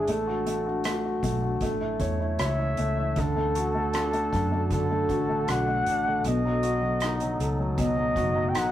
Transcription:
0.00 0.11 G#3 medium
0.00 0.11 D4 medium
0.00 1.58 D4 medium
0.00 0.11 E4 soft
0.00 0.12 G#4 medium
0.07 1.19 A1 medium
0.07 1.60 F#3 medium
0.07 0.45 A3 medium
0.07 3.14 A3 medium
0.07 0.86 A4 medium
0.07 closed hi-hat medium
0.27 0.65 F#4 soft
0.47 0.84 A3 soft
0.47 closed hi-hat medium
0.67 1.04 F#4 soft
0.84 1.22 A3 soft
0.84 cross-stick medium
0.84 closed hi-hat medium
1.05 1.41 F#4 soft
1.23 1.59 B1 medium
1.23 1.61 A3 medium
1.23 kick medium
1.23 closed hi-hat medium
1.42 1.61 F#4 soft
1.61 1.97 A1 medium
1.61 3.16 E3 medium
1.61 2.77 A3 medium
1.61 3.16 C#4 medium
1.61 kick medium
1.61 closed hi-hat medium
1.81 2.19 E4 soft
2.00 2.36 E2 medium
2.00 2.38 C#5 soft
2.00 kick medium
2.00 closed hi-hat medium
2.20 2.57 E4 soft
2.39 2.76 C#2 medium
2.39 3.15 C#5 medium
2.39 3.21 E5 medium
2.39 cross-stick medium
2.39 closed hi-hat medium
2.59 2.96 E4 soft
2.77 3.14 C#2 medium
2.77 3.16 A3 medium
2.77 closed hi-hat medium
2.98 3.16 E4 soft
3.16 4.29 D2 medium
3.16 4.70 D3 medium
3.16 6.22 D3 medium
3.16 6.22 D4 medium
3.16 6.22 F#4 medium
3.16 6.22 A4 medium
3.16 4.73 A4 medium
3.16 kick medium
3.16 closed hi-hat medium
3.36 3.73 A3 soft
3.55 5.06 F#4 soft
3.55 closed hi-hat medium
3.75 4.12 A3 soft
3.93 4.31 D4 soft
3.93 cross-stick medium
3.93 closed hi-hat medium
4.13 4.50 A3 soft
4.13 closed hi-hat soft
4.32 5.05 F#2 medium
4.32 5.47 D4 soft
4.32 kick medium
4.32 closed hi-hat medium
4.52 4.89 A3 soft
4.71 6.21 D3 medium
4.71 5.51 A4 medium
4.71 kick medium
4.71 closed hi-hat medium
4.91 5.28 A3 soft
5.09 5.45 A1 medium
5.09 6.22 F#4 soft
5.09 kick medium
5.09 closed hi-hat medium
5.29 5.67 A3 soft
5.48 5.84 B1 medium
5.48 5.87 D4 medium
5.48 6.26 F#5 medium
5.48 cross-stick medium
5.48 closed hi-hat medium
5.69 6.06 A3 soft
5.86 6.22 A1 medium
5.86 6.24 D4 medium
5.86 closed hi-hat medium
6.07 6.25 A3 soft
6.24 7.36 B1 medium
6.24 7.76 B2 medium
6.24 8.72 A3 medium
6.24 8.72 B3 medium
6.24 8.72 D#4 medium
6.24 7.48 D#5 medium
6.24 closed hi-hat medium
6.45 6.80 F#3 medium
6.63 8.12 F#4 soft
6.63 closed hi-hat medium
6.82 7.20 F#3 soft
7.00 8.51 D#4 medium
7.00 cross-stick loud
7.00 closed hi-hat medium
7.20 7.57 F#3 soft
7.20 closed hi-hat soft
7.39 8.18 C#2 medium
7.39 8.72 A4 soft
7.39 closed hi-hat medium
7.59 7.96 F#3 soft
7.78 8.72 B2 medium
7.78 8.50 D#5 medium
7.78 kick medium
7.78 closed hi-hat medium
7.97 8.34 F#3 soft
8.16 8.52 F#1 medium
8.16 8.72 F#4 medium
8.16 kick medium
8.16 closed hi-hat medium
8.36 8.72 F#3 medium
8.49 8.59 G5 medium
8.55 8.72 A1 medium
8.55 8.72 D#4 medium
8.55 8.72 F#5 medium
8.55 cross-stick medium
8.55 closed hi-hat medium

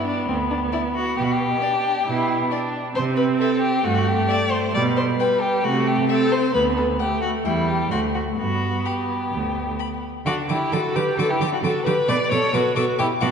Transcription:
0.00 1.63 B3 medium
0.05 0.27 D4 medium
0.27 0.65 D2 soft
0.27 0.36 C4 medium
0.51 0.59 D4 medium
0.72 0.81 E4 medium
0.72 0.80 D5 soft
0.95 1.16 F#4 medium
1.17 1.54 B2 medium
1.17 1.25 G4 medium
1.24 1.33 F#4 medium
1.31 2.73 G4 medium
1.61 2.06 D4 soft
1.61 1.70 D5 soft
2.06 2.43 B2 medium
2.06 2.50 E4 medium
2.50 2.94 D4 medium
2.50 2.59 D5 soft
2.95 3.32 C3 medium
2.95 3.83 C4 medium
2.95 3.03 C5 medium
3.17 3.25 B4 medium
3.39 3.61 A4 medium
3.39 3.49 E5 soft
3.62 3.86 G4 medium
3.84 4.22 G2 medium
3.84 4.76 A3 medium
3.84 4.08 F#4 medium
4.07 4.30 G4 medium
4.29 4.53 D5 medium
4.29 4.38 E5 medium
4.51 4.74 C5 medium
4.74 5.12 B2 medium
4.74 5.18 G3 medium
4.74 4.82 D5 medium
4.97 5.05 C5 medium
5.19 5.65 G3 medium
5.19 5.43 B4 medium
5.19 5.28 G5 soft
5.42 5.65 G4 medium
5.64 6.02 C3 medium
5.64 6.09 A3 medium
5.64 5.89 F#4 medium
5.87 6.09 G4 medium
6.09 6.53 C4 medium
6.09 6.34 A4 medium
6.09 6.17 E5 soft
6.32 6.53 C5 medium
6.54 6.92 D2 medium
6.54 7.01 B3 medium
6.54 6.62 B4 medium
6.77 6.85 A4 medium
6.99 7.47 A3 medium
6.99 7.21 G4 medium
6.99 7.07 F#5 soft
7.22 7.30 F#4 medium
7.44 7.83 E2 medium
7.44 7.91 G3 medium
7.44 7.70 E4 medium
7.44 7.53 G5 soft
7.68 7.90 G4 medium
7.91 8.30 D2 soft
7.91 8.37 A3 soft
7.91 7.99 F#4 medium
7.91 7.99 C6 soft
8.15 8.23 F#4 medium
8.38 8.78 G2 soft
8.38 10.00 B3 soft
8.38 8.87 F#4 medium
8.85 10.03 G4 soft
8.85 8.93 B5 soft
9.32 9.71 D2 soft
9.79 9.87 B5 soft
10.26 10.34 D3 medium
10.26 10.48 D4 medium
10.26 10.34 F#4 medium
10.26 10.34 D6 medium
10.49 10.57 D3 soft
10.49 10.74 E4 medium
10.49 10.74 G4 medium
10.49 10.57 D6 soft
10.72 10.81 D3 medium
10.72 10.97 F#4 medium
10.72 10.97 A4 medium
10.72 10.80 D6 soft
10.95 11.04 D3 soft
10.95 11.20 G4 medium
10.95 11.17 B4 medium
10.95 11.04 D6 soft
11.18 11.26 D3 medium
11.18 11.29 F#4 medium
11.18 11.31 A4 medium
11.18 11.27 D6 soft
11.29 11.37 E4 medium
11.29 11.52 G4 medium
11.40 11.48 D3 medium
11.40 11.49 D6 soft
11.52 11.57 D4 soft
11.52 11.57 F#4 medium
11.63 11.71 D3 medium
11.63 11.85 F#4 medium
11.63 11.85 A4 medium
11.63 11.72 D6 soft
11.85 11.94 D3 soft
11.85 11.94 G4 medium
11.85 12.10 B4 medium
11.85 11.94 D6 soft
12.09 12.17 B2 medium
12.09 12.17 B4 medium
12.09 12.31 D5 medium
12.09 12.17 D6 medium
12.31 12.40 B2 medium
12.31 12.54 A4 medium
12.31 12.56 C#5 medium
12.31 12.39 D6 soft
12.54 12.62 B2 medium
12.54 12.76 F#4 medium
12.54 12.75 B4 medium
12.54 12.62 D6 soft
12.76 12.84 B2 medium
12.76 12.99 F#4 medium
12.76 12.84 A4 medium
12.76 12.84 D6 medium
12.99 13.08 B2 medium
12.99 13.07 E4 medium
12.99 13.07 G4 medium
12.99 13.07 D6 soft
13.21 13.30 B2 medium
13.21 13.31 D4 medium
13.21 13.29 F#4 medium
13.21 13.29 D6 medium

